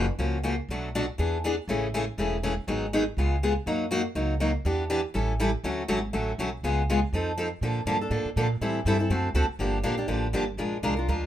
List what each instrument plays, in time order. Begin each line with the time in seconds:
0.18 upright bass C#2, steel-string acoustic guitar C#3 F3 A#3 C#4 F#4
0.43 steel-string acoustic guitar C#3 F3 A#3 C#4 F#4
0.69 upright bass B1, steel-string acoustic guitar B2 F#3 A3 D4 F#4
0.95 steel-string acoustic guitar B2 F#3 A3 D4 F#4
1.18 upright bass E2, steel-string acoustic guitar E3 B3 D4 G#4
1.44 steel-string acoustic guitar E3 B3 D4 G#4
1.68 upright bass A1, steel-string acoustic guitar C#3 E3 A3 C#4 G#4
1.94 steel-string acoustic guitar C#3 E3 A3 C#4 G#4
2.18 upright bass E1, steel-string acoustic guitar C#3 E3 A3 C#4 G#4
2.43 steel-string acoustic guitar C#3 E3 A3 C#4 G#4
2.67 upright bass G#1, steel-string acoustic guitar D#3 F#3 B3 D#4 G#4
2.93 steel-string acoustic guitar D#3 F#3 B3 D#4 G#4
3.17 upright bass C#2, steel-string acoustic guitar C#3 G#3 B3 F4 G#4
3.43 steel-string acoustic guitar C#3 G#3 B3 F4 G#4
3.66 upright bass F#2, steel-string acoustic guitar F#3 A#3 D#4 F#4
3.91 steel-string acoustic guitar F#3 A#3 D#4 F#4
4.15 upright bass C#2, steel-string acoustic guitar F#3 A#3 D#4 F#4
4.40 steel-string acoustic guitar F#3 A#3 D#4 F#4
4.65 upright bass E2, steel-string acoustic guitar E3 B3 D4 G4
4.90 steel-string acoustic guitar E3 B3 D4 G4
5.14 upright bass A1, steel-string acoustic guitar E3 G3 C#4 E4 A4
5.40 steel-string acoustic guitar E3 G3 C#4 E4 A4
5.64 upright bass D2, steel-string acoustic guitar D3 F#3 A3 C#4 F#4
5.88 upright bass G#1, steel-string acoustic guitar D3 F#3 A3 C#4 F#4
6.13 upright bass A1, steel-string acoustic guitar D3 F#3 A3 C#4 F#4
6.38 upright bass B1, steel-string acoustic guitar D3 F#3 A3 C#4 F#4
6.63 upright bass C#2, steel-string acoustic guitar C#3 G#3 B3 F4 G#4
6.90 steel-string acoustic guitar C#3 G#3 B3 F4 G#4
7.13 upright bass F2, steel-string acoustic guitar F3 C4 D#4 A4
7.37 steel-string acoustic guitar F3 C4 D#4 A4
7.61 upright bass A#2, steel-string acoustic guitar D3 F3 A#3 D4 A4
7.86 upright bass G2, steel-string acoustic guitar D3 F3 A#3 D4 A4
8.01 steel-string acoustic guitar A#3 D4 A4
8.10 upright bass A2, steel-string acoustic guitar D3 F3 A#3 D4 A4
8.25 muted upright bass stroke
8.36 upright bass A#2, steel-string acoustic guitar D3 F3 A#3 D4 A4
8.61 upright bass A2, steel-string acoustic guitar E3 G3 C4 E4 A4
8.85 upright bass G2, steel-string acoustic guitar E3 G3 C4 E4 A4
8.99 steel-string acoustic guitar C4 E4 A4
9.10 upright bass F#2, steel-string acoustic guitar D3 A3 C4 F#4 A4
9.34 upright bass D2, steel-string acoustic guitar D3 A3 C4 F#4 A4
9.49 muted upright bass stroke
9.59 upright bass G1, steel-string acoustic guitar D3 F3 A#3 D4 G4
9.83 upright bass A#1, steel-string acoustic guitar D3 F3 A#3 D4 G4
9.97 steel-string acoustic guitar A#3 D4 G4
10.08 upright bass A1, steel-string acoustic guitar D3 F3 A#3 D4 G4
10.33 upright bass G1, steel-string acoustic guitar D3 F3 A#3 D4 G4
10.57 upright bass A#1, steel-string acoustic guitar F3 G#3 D4 F4 A#4
10.83 upright bass C2, steel-string acoustic guitar F3 G#3 D4 F4 A#4
10.97 steel-string acoustic guitar D4 F4 A#4
11.08 upright bass D2, steel-string acoustic guitar F3 G#3 D4 F4 A#4